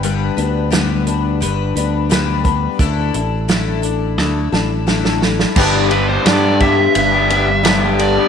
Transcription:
<<
  \new Staff \with { instrumentName = "Lead electric guitar" } { \time 4/4 \key g \major \tempo 4 = 87 r1 | r1 | r8 b'16 c''16 d''8 e''2 d''8 | }
  \new Staff \with { instrumentName = "Twelve-string acoustic guitar" } { \time 4/4 \key g \major <g, d g b d' b'>8 <g b d' b'>8 <g, d g b d' b'>8 <g b d' b'>8 <g b d' b'>8 <g b d' b'>8 <g, d g b d' b'>8 <g b d' b'>8 | <d a d' e' a'>8 <d' e' a'>8 <d a d' e' a'>8 <d' e' a'>8 <a d' e' a'>8 <d' e' a'>8 <d a d' e' a'>8 <d' e' a'>8 | <g, d g b d' g'>8 <g b d' g'>8 <g b d' g'>8 <g b d' g'>8 <g, d g b d' g'>8 <g b d' g'>8 <g b d' g'>8 <g b d' g'>8 | }
  \new Staff \with { instrumentName = "Overdriven electric guitar" } { \time 4/4 \key g \major r1 | r1 | <g, d g b d' g'>8. <g b d' g'>16 <g, d g b d' g'>8 <g b d' g'>8. <g b d' g'>16 <g b d' g'>8 <g, d g b d' g'>16 <g b d' g'>8 <g b d' g'>16 | }
  \new Staff \with { instrumentName = "Fingered electric bass" } { \clef bass \time 4/4 \key g \major g,,8 d,4. g,,8 d,4. | d,8 a,,4. d,8 a,,4. | g,,4 g,4 g,,2 | }
  \new DrumStaff \with { instrumentName = "Drums" } \drummode { \time 4/4 hh8 hh8 <hh sn>8 hh8 hh8 hh8 <hh sn>8 <hh bd>8 | <hh bd>8 hh8 <hh sn>8 hh8 sn8 sn8 sn16 sn16 sn16 sn16 | <cymc bd>8 cymr8 <cymr sn>8 <bd cymr>8 cymr8 cymr8 <cymr sn>8 cymr8 | }
>>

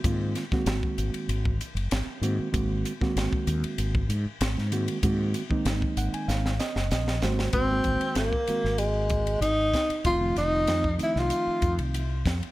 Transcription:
<<
  \new Staff \with { instrumentName = "Tenor saxophone" } { \time 4/4 \key aes \mixolydian \tempo 4 = 96 r1 | r1 | r1 | c'4 bes4 aes4 ees'4 |
f'8 ees'4 fes'16 f'4 r4 r16 | }
  \new Staff \with { instrumentName = "Reed electric piano" } { \time 4/4 \key aes \mixolydian r1 | r1 | r4. ges''16 aes''16 f''8 ees''8 ees''8 c''8 | r1 |
r1 | }
  \new Staff \with { instrumentName = "Reed electric piano" } { \time 4/4 \key aes \mixolydian <ees aes bes c' f'>8 r16 <ees aes bes c' ges'>4. r4 r16 <ees aes bes c' ges'>8 | <ees aes bes c' ges'>8 r16 <ees aes bes c' ges'>4. r4 r16 <ees aes bes c' ges'>8 | <ees aes bes c' ges'>8 r16 <ees aes bes c' ees'>4. r4 r16 <ees aes bes c' ges'>8 | <ees aes bes c' ges'>16 <ees aes bes c' ges'>4 r16 <ees aes bes c' ges'>4. r4 |
<ees f a c' f'>16 <ees f a c' f'>4 r16 <ees f a c' ees'>4. r4 | }
  \new Staff \with { instrumentName = "Fretless electric bass" } { \clef bass \time 4/4 \key aes \mixolydian aes,8 r8 aes,,16 r16 aes,,16 r16 aes,,8 r16 ges,,16 aes,,16 r16 aes,16 r16 | aes,,8 r8 aes,,16 r16 ees,16 r16 aes,,8 aes,16 r16 aes,,16 aes,8 r16 | aes,8 r8 aes,,16 r16 aes,,16 r16 aes,,8 r16 ges,,16 bes,,8 aes,,8 | aes,,8 aes,,16 r16 aes,,16 r8 aes,,4~ aes,,16 aes,,8 r8 |
f,,8 f,,8 f,8 r16 c,16 r8 f,16 c,8. f,16 r16 | }
  \new DrumStaff \with { instrumentName = "Drums" } \drummode { \time 4/4 <hhp bd cymr>8 <hhp cymr sn>16 <bd sn>16 <hhp cymr sn>16 bd16 <hhp cymr>16 cymr16 <hhp cymr>16 bd16 <hhp cymr>16 cymr16 <hhp cymr sn>8 <hhp cymr>8 | <hhp bd cymr>8 <hhp cymr>16 <bd sn>16 <hhp cymr sn>16 bd16 <hhp cymr>16 cymr16 <hhp cymr>16 bd16 <hhp cymr>8 <hhp cymr sn>16 sn16 <hhp cymr>16 cymr16 | <hhp bd cymr>8 <hhp cymr>16 bd16 <hhp cymr sn>16 bd16 <hhp cymr>16 cymr16 <hhp sn>16 sn16 <hhp sn>16 sn16 <hhp sn>16 sn16 <hhp sn>16 sn16 | <hhp bd cymr>8 <hhp bd cymr>16 cymr16 <hhp cymr sn>16 bd16 <hhp cymr>16 sn16 <hhp cymr>8 <hhp bd cymr>16 cymr16 <hhp cymr>8 <hhp bd cymr sn>16 cymr16 |
<hhp bd cymr>8 <hhp cymr sn>8 <hhp cymr sn>16 bd16 <hhp cymr>16 sn16 <hhp cymr>8 <hhp bd cymr>16 cymr16 <hhp cymr>8 <hhp bd cymr sn>16 cymr16 | }
>>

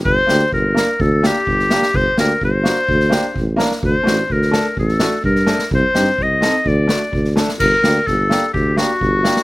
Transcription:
<<
  \new Staff \with { instrumentName = "Clarinet" } { \time 4/4 \tempo 4 = 127 c''4 bes'4 a'8 g'4. | c''8 bes'8 c''2~ c''8 r8 | c''4 bes'4 a'4 bes'4 | c''4 ees''4 d''4. r8 |
bes'4 a'4 g'8 fis'4. | }
  \new Staff \with { instrumentName = "Upright piano" } { \time 4/4 r8 <bes d' g'>16 r8. <bes d' bes'>16 r8. <bes d' g'>16 r8. <bes d' g'>16 r16 | r8 <bes d' g'>16 r8. <bes d' fis'>16 r8. <bes d' g'>16 r8. <bes d' bes'>16 r16 | r8 <a d' fis'>16 r8. <a d' a'>16 r8. <a d' fis'>16 r8. <a d' a'>16 r16 | r8 <c' ees' g'>16 r8. <c' ees' a'>16 r8. <a d' fis'>16 r8. <a d' a'>16 r16 |
r8 <bes d' g'>16 r8. <bes d' g'>16 r8. <bes d' g'>16 r8. <bes d' g'>16 r16 | }
  \new Staff \with { instrumentName = "Tuba" } { \clef bass \time 4/4 g,,8 d,8 g,,4 d,4 g,,4 | g,,8 d,8 g,,4 d,4 a,,4 | d,8 a,,8 d,4 a,,4 g,4 | c,8 g,8 c,4 d,4 d,4 |
g,,8 d,8 g,,4 d,4 g,,4 | }
  \new DrumStaff \with { instrumentName = "Drums" } \drummode { \time 4/4 bd8 sn8 bd8 sn8 bd8 sn8 bd16 sn16 sn16 sn16 | bd8 sn8 bd8 sn8 bd16 sn16 sn8 bd8 sn16 sn16 | bd8 sn8 bd16 sn16 sn8 bd16 sn16 sn8 bd16 sn16 sn16 sn16 | bd8 sn8 bd8 sn8 bd8 sn8 bd16 sn16 sn16 sn16 |
<cymc bd>8 sn8 <bd sn>8 sn8 bd8 sn8 bd8 sn16 sn16 | }
>>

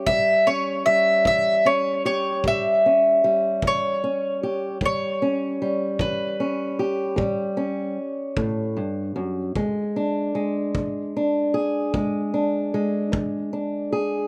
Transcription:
<<
  \new Staff \with { instrumentName = "Mandolin" } { \time 12/8 \key a \major \tempo 4. = 50 e''8 cis''8 e''8 e''8 cis''8 cis''8 e''4. cis''4. | cis''4. b'4. r2. | r1. | }
  \new Staff \with { instrumentName = "Steel-string acoustic guitar" } { \clef bass \time 12/8 \key a \major << { g8 cis'8 g4 cis'8 g'8 g8 cis'8 g4 cis'8 g'8 | g8 cis'8 g4 cis'8 g'8 g8 cis'2~ cis'8 | gis8 d'8 gis4 d'8 gis'8 gis8 d'8 gis4 d'8 gis'8 | } \\ { a,4 r8 e4 r8 a,4 r8 e4 r8 | a,4 r8 e4 r8 a,4 r8 a,8 g,8 fis,8 | e,4 r8 e4 r8 e,4 r8 e4 r8 | } >> }
  \new DrumStaff \with { instrumentName = "Drums" } \drummode { \time 12/8 bd4. bd4. bd4. bd4. | bd4. bd4. bd4. bd4. | bd4. bd4. bd4. bd4. | }
>>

